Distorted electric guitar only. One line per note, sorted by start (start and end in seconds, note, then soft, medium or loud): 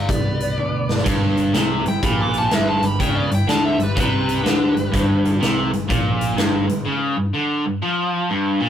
1.04 1.53 G2 medium
1.53 1.84 C3 medium
1.86 1.99 G2 medium
2.03 2.51 A#2 medium
2.51 2.81 G2 medium
2.83 2.96 G2 medium
2.99 3.29 C#3 loud
3.31 3.44 G2 medium
3.48 3.78 D3 medium
3.79 3.93 G2 medium
3.96 4.43 C3 medium
4.44 4.74 D3 loud
4.75 4.89 G2 medium
4.92 5.40 G2 medium
5.40 5.71 C3 medium
5.71 5.86 G2 medium
5.89 6.37 A#2 medium
6.37 6.66 G2 loud
6.67 6.82 G2 medium
6.85 7.16 C#3 medium
7.16 7.30 G2 medium
7.33 7.64 D3 medium
7.66 7.79 G2 medium
7.82 8.30 F3 medium
8.30 8.60 G2 medium
8.61 8.69 A#2 medium